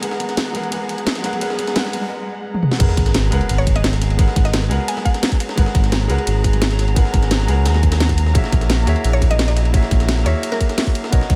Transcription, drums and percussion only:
0.03 closed hi-hat medium
0.03 ride medium
0.11 snare medium
0.20 snare soft
0.20 closed hi-hat medium
0.20 ride medium
0.29 snare soft
0.29 closed hi-hat soft
0.37 snare loud
0.37 closed hi-hat medium
0.37 ride medium
0.55 snare soft
0.55 closed hi-hat medium
0.55 ride medium
0.63 ride soft
0.72 closed hi-hat medium
0.72 ride medium
0.89 closed hi-hat medium
0.89 ride medium
0.98 closed hi-hat soft
1.07 snare loud
1.07 closed hi-hat medium
1.07 ride medium
1.15 snare medium
1.15 closed hi-hat soft
1.24 snare medium
1.24 closed hi-hat medium
1.24 ride medium
1.33 snare soft
1.33 ride soft
1.41 closed hi-hat medium
1.41 ride medium
1.50 snare soft
1.59 snare soft
1.59 closed hi-hat medium
1.59 ride medium
1.67 snare medium
1.67 closed hi-hat soft
1.76 snare loud
1.76 closed hi-hat medium
1.76 ride medium
1.85 snare medium
1.93 snare soft
1.93 closed hi-hat medium
1.93 ride medium
2.54 high tom medium
2.63 mid tom medium
2.71 snare medium
2.80 kick loud
2.80 closed hi-hat loud
2.80 crash loud
2.80 ride medium
2.89 snare medium
2.97 kick loud
2.97 snare soft
2.97 closed hi-hat medium
2.97 ride medium
3.06 snare soft
3.06 closed hi-hat soft
3.14 snare loud
3.14 closed hi-hat loud
3.14 ride medium
3.32 closed hi-hat medium
3.32 ride medium
3.41 ride soft
3.49 closed hi-hat loud
3.49 ride medium
3.67 kick medium
3.67 closed hi-hat medium
3.67 ride medium
3.76 snare soft
3.76 closed hi-hat soft
3.84 snare loud
3.84 closed hi-hat loud
3.84 ride medium
3.93 snare medium
3.93 closed hi-hat soft
4.02 snare soft
4.02 closed hi-hat medium
4.02 ride medium
4.10 ride soft
4.19 kick loud
4.19 closed hi-hat medium
4.19 ride medium
4.28 snare soft
4.36 kick loud
4.36 snare medium
4.36 closed hi-hat medium
4.36 ride medium
4.45 snare medium
4.45 closed hi-hat soft
4.54 snare loud
4.54 closed hi-hat medium
4.54 ride medium
4.62 snare medium
4.71 closed hi-hat medium
4.71 ride medium
4.88 closed hi-hat loud
4.88 ride medium
4.97 snare medium
4.97 snare soft
5.05 kick medium
5.05 closed hi-hat medium
5.05 ride medium
5.14 snare soft
5.14 closed hi-hat soft
5.23 snare loud
5.23 closed hi-hat loud
5.23 open hi-hat medium
5.32 kick medium
5.32 closed hi-hat soft
5.40 closed hi-hat medium
5.40 ride medium
5.49 snare medium
5.57 kick loud
5.57 closed hi-hat medium
5.57 ride medium
5.66 snare medium
5.75 kick loud
5.75 snare medium
5.75 closed hi-hat medium
5.75 ride medium
5.84 snare soft
5.84 closed hi-hat soft
5.92 snare loud
5.92 closed hi-hat medium
5.92 ride medium
6.09 closed hi-hat medium
6.09 ride medium
6.18 ride soft
6.27 closed hi-hat loud
6.27 ride medium
6.44 kick medium
6.44 closed hi-hat medium
6.44 ride medium
6.53 snare soft
6.53 closed hi-hat soft
6.62 snare loud
6.62 closed hi-hat loud
6.62 ride medium
6.70 snare medium
6.70 closed hi-hat soft
6.79 snare medium
6.79 closed hi-hat medium
6.79 ride medium
6.88 ride soft
6.96 kick loud
6.96 closed hi-hat medium
6.96 ride medium
7.05 snare soft
7.14 kick loud
7.14 snare soft
7.14 closed hi-hat medium
7.14 ride medium
7.22 snare medium
7.22 closed hi-hat soft
7.31 snare loud
7.31 closed hi-hat medium
7.31 ride medium
7.40 snare medium
7.48 closed hi-hat medium
7.48 ride medium
7.66 snare loud
7.66 closed hi-hat medium
7.66 ride medium
7.74 snare soft
7.83 kick medium
7.83 closed hi-hat medium
7.83 ride medium
7.92 snare loud
7.92 closed hi-hat soft
7.92 ride medium
8.00 snare loud
8.00 snare medium
8.00 closed hi-hat medium
8.09 kick medium
8.09 closed hi-hat soft
8.09 ride medium
8.18 closed hi-hat medium
8.18 ride medium
8.26 snare soft
8.35 kick loud
8.35 closed hi-hat medium
8.35 ride medium
8.44 snare medium
8.52 kick loud
8.52 snare soft
8.52 closed hi-hat medium
8.52 ride medium
8.61 snare soft
8.61 closed hi-hat soft
8.70 snare loud
8.70 closed hi-hat medium
8.70 ride medium
8.87 closed hi-hat medium
8.87 ride medium
8.96 ride soft
9.04 closed hi-hat medium
9.04 ride medium
9.22 kick medium
9.22 closed hi-hat medium
9.22 ride medium
9.31 snare soft
9.31 closed hi-hat soft
9.39 snare loud
9.39 closed hi-hat medium
9.39 ride medium
9.48 snare medium
9.48 closed hi-hat soft
9.56 snare medium
9.56 closed hi-hat medium
9.56 ride medium
9.65 ride soft
9.74 kick loud
9.74 closed hi-hat medium
9.74 ride medium
9.83 snare soft
9.91 kick loud
9.91 snare soft
9.91 closed hi-hat medium
9.91 ride medium
10.00 snare medium
10.00 closed hi-hat soft
10.09 snare loud
10.09 closed hi-hat medium
10.09 ride medium
10.17 snare medium
10.26 closed hi-hat medium
10.26 ride medium
10.43 closed hi-hat medium
10.43 ride medium
10.52 snare medium
10.52 snare soft
10.60 kick medium
10.60 closed hi-hat medium
10.60 ride medium
10.69 snare medium
10.69 closed hi-hat soft
10.78 snare loud
10.78 closed hi-hat loud
10.78 open hi-hat medium
10.87 kick medium
10.87 closed hi-hat soft
10.95 closed hi-hat medium
10.95 ride medium
11.04 snare medium
11.12 kick loud
11.12 closed hi-hat loud
11.12 ride medium
11.21 snare medium
11.30 kick medium
11.30 snare soft
11.30 closed hi-hat medium
11.30 ride medium

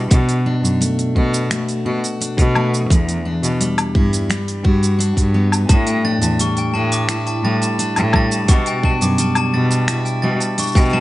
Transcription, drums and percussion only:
0.11 kick loud
0.11 open hi-hat medium
0.11 shaker soft
0.29 open hi-hat soft
0.29 shaker soft
0.65 shaker medium
0.82 open hi-hat medium
0.82 shaker soft
0.99 open hi-hat soft
0.99 shaker soft
1.16 kick medium
1.34 shaker medium
1.51 finger snap medium
1.51 open hi-hat medium
1.51 shaker medium
1.69 open hi-hat soft
1.69 shaker soft
2.04 open hi-hat soft
2.04 shaker medium
2.22 open hi-hat medium
2.22 shaker soft
2.38 kick medium
2.38 open hi-hat soft
2.38 shaker soft
2.55 low woodblock medium
2.74 shaker medium
2.90 kick loud
2.90 open hi-hat medium
2.90 shaker soft
3.09 open hi-hat soft
3.09 shaker soft
3.43 open hi-hat soft
3.43 shaker medium
3.61 open hi-hat medium
3.61 shaker medium
3.78 open hi-hat soft
3.78 low woodblock medium
3.78 shaker soft
3.95 kick medium
4.13 open hi-hat soft
4.13 shaker medium
4.31 finger snap medium
4.31 open hi-hat medium
4.31 shaker soft
4.48 open hi-hat soft
4.48 shaker soft
4.65 kick medium
4.83 open hi-hat soft
4.83 shaker medium
5.00 open hi-hat medium
5.00 shaker soft
5.17 kick medium
5.17 open hi-hat soft
5.17 shaker soft
5.52 low woodblock medium
5.52 shaker medium
5.69 kick loud
5.69 open hi-hat medium
5.69 shaker medium
5.87 open hi-hat soft
5.87 shaker soft
6.22 open hi-hat soft
6.22 shaker medium
6.39 open hi-hat medium
6.39 shaker medium
6.57 open hi-hat soft
6.57 shaker soft
6.92 open hi-hat soft
6.92 shaker medium
7.09 finger snap medium
7.09 open hi-hat medium
7.09 shaker soft
7.27 open hi-hat soft
7.27 shaker soft
7.62 open hi-hat soft
7.62 shaker medium
7.79 open hi-hat medium
7.79 shaker medium
7.96 open hi-hat soft
7.96 low woodblock medium
7.96 shaker soft
8.13 kick loud
8.13 low woodblock medium
8.32 shaker medium
8.48 kick loud
8.48 open hi-hat medium
8.48 shaker medium
8.66 open hi-hat soft
8.66 shaker soft
8.83 kick medium
9.01 open hi-hat soft
9.01 shaker medium
9.18 open hi-hat medium
9.18 shaker medium
9.35 open hi-hat soft
9.35 low woodblock medium
9.35 shaker soft
9.71 open hi-hat soft
9.71 shaker medium
9.88 finger snap medium
9.88 open hi-hat medium
9.88 shaker medium
10.06 open hi-hat soft
10.06 shaker soft
10.40 open hi-hat soft
10.40 shaker medium
10.58 open hi-hat medium
10.58 shaker medium
10.62 shaker soft
10.67 shaker soft
10.72 kick loud
10.72 shaker soft
10.76 open hi-hat soft
10.76 shaker soft
10.81 shaker soft
10.85 shaker soft
10.90 shaker soft

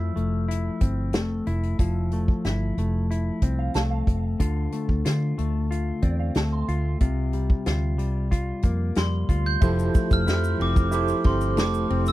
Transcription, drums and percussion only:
0.17 closed hi-hat medium
0.51 closed hi-hat medium
0.81 kick medium
0.81 closed hi-hat medium
1.13 snare loud
1.13 closed hi-hat medium
1.47 closed hi-hat medium
1.63 closed hi-hat soft
1.79 kick medium
1.79 closed hi-hat medium
2.11 closed hi-hat medium
2.28 kick medium
2.44 snare medium
2.44 closed hi-hat medium
2.78 closed hi-hat medium
3.11 closed hi-hat medium
3.42 kick medium
3.42 closed hi-hat medium
3.74 snare loud
3.74 closed hi-hat medium
4.07 kick medium
4.07 closed hi-hat medium
4.40 kick medium
4.40 closed hi-hat medium
4.72 closed hi-hat medium
4.89 kick medium
5.05 snare medium
5.05 closed hi-hat medium
5.38 closed hi-hat medium
5.72 closed hi-hat medium
6.02 kick medium
6.02 closed hi-hat medium
6.34 snare loud
6.34 closed hi-hat medium
6.68 closed hi-hat medium
7.00 kick medium
7.00 closed hi-hat medium
7.33 closed hi-hat medium
7.50 kick medium
7.66 snare medium
7.66 closed hi-hat medium
7.99 closed hi-hat medium
8.32 kick medium
8.32 closed hi-hat medium
8.62 kick medium
8.62 closed hi-hat medium
8.95 snare loud
8.95 closed hi-hat medium
9.29 kick medium
9.29 closed hi-hat medium
9.61 kick loud
9.61 ride medium
9.61 shaker medium
9.79 shaker soft
9.95 kick loud
9.95 ride medium
9.95 shaker medium
10.11 kick loud
10.11 ride soft
10.11 shaker soft
10.28 snare medium
10.28 ride medium
10.28 shaker medium
10.44 shaker medium
10.61 ride medium
10.76 kick loud
10.76 ride soft
10.76 shaker medium
10.92 ride medium
10.92 shaker medium
11.08 ride soft
11.08 shaker soft
11.24 kick medium
11.24 ride medium
11.41 ride soft
11.41 shaker soft
11.57 snare loud
11.57 ride medium
11.57 shaker medium
11.74 shaker soft
11.90 ride medium
12.06 ride soft
12.06 shaker medium

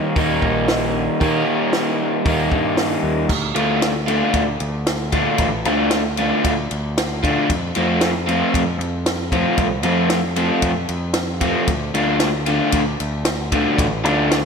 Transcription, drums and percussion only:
0.16 kick loud
0.16 open hi-hat medium
0.42 kick medium
0.68 snare loud
0.68 open hi-hat medium
1.21 kick medium
1.21 open hi-hat medium
1.73 snare loud
1.73 open hi-hat medium
2.26 kick loud
2.26 open hi-hat medium
2.52 kick medium
2.77 snare loud
2.77 open hi-hat medium
3.29 kick medium
3.29 crash medium
3.56 ride medium
3.82 snare loud
3.82 ride medium
4.08 ride medium
4.34 kick medium
4.34 ride medium
4.60 ride medium
4.87 snare loud
4.87 ride medium
5.12 kick medium
5.12 ride medium
5.38 kick medium
5.38 ride medium
5.65 ride medium
5.91 snare loud
5.91 ride loud
6.17 ride medium
6.44 kick medium
6.44 ride medium
6.71 ride medium
6.98 snare loud
6.98 ride loud
7.24 kick medium
7.24 ride medium
7.50 kick loud
7.50 ride medium
7.75 ride medium
8.01 snare loud
8.01 ride loud
8.28 ride medium
8.54 kick medium
8.54 ride medium
8.81 ride medium
9.06 snare loud
9.06 ride loud
9.32 kick loud
9.32 ride medium
9.58 kick medium
9.58 ride medium
9.83 ride medium
10.10 snare loud
10.10 ride loud
10.36 ride medium
10.62 kick medium
10.62 ride loud
10.89 ride medium
11.14 snare loud
11.14 ride loud
11.41 kick medium
11.41 ride medium
11.67 kick loud
11.67 ride medium
11.95 ride medium
12.20 snare loud
12.20 ride loud
12.46 ride medium
12.72 kick medium
12.72 ride medium
13.00 ride medium
13.25 snare loud
13.25 ride loud
13.52 kick loud
13.52 ride medium
13.78 kick loud
13.78 ride medium
14.05 ride medium
14.31 snare loud
14.31 ride medium

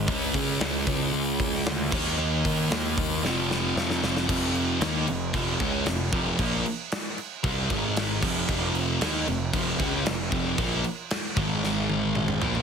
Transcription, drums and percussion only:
0.08 kick loud
0.34 kick medium
0.34 open hi-hat medium
0.60 snare loud
0.60 open hi-hat medium
0.87 kick medium
0.87 open hi-hat medium
1.14 open hi-hat medium
1.40 kick medium
1.40 open hi-hat medium
1.54 snare soft
1.66 snare loud
1.66 open hi-hat medium
1.92 kick loud
1.92 crash loud
2.06 snare soft
2.45 kick medium
2.45 open hi-hat medium
2.71 snare loud
2.71 open hi-hat medium
2.97 kick medium
2.97 open hi-hat medium
3.25 snare medium
3.51 snare medium
3.77 snare medium
3.90 snare medium
4.04 snare loud
4.17 snare loud
4.29 kick loud
4.29 crash loud
4.29 crash medium
4.55 crash medium
4.81 snare loud
4.81 crash medium
5.07 crash medium
5.34 kick loud
5.34 crash medium
5.60 kick loud
5.60 crash medium
5.86 snare loud
5.86 crash medium
6.12 kick loud
6.12 crash medium
6.39 kick loud
6.39 crash medium
6.66 crash medium
6.92 snare loud
6.92 crash medium
7.18 crash medium
7.44 kick loud
7.44 crash medium
7.70 kick loud
7.70 crash medium
7.96 snare loud
7.96 crash medium
8.23 kick loud
8.23 crash loud
8.49 kick loud
8.49 crash medium
8.75 crash medium
9.01 snare loud
9.01 crash medium
9.28 crash medium
9.53 kick loud
9.53 crash medium
9.80 kick loud
9.80 crash medium
10.06 snare loud
10.06 crash medium
10.32 kick loud
10.32 crash medium
10.58 kick loud
10.58 crash medium
10.84 crash medium
11.10 snare loud
11.10 crash medium
11.37 kick loud
11.37 crash medium
11.64 snare medium
11.90 high tom medium
12.15 mid tom medium
12.28 mid tom medium
12.42 floor tom loud
12.55 floor tom medium

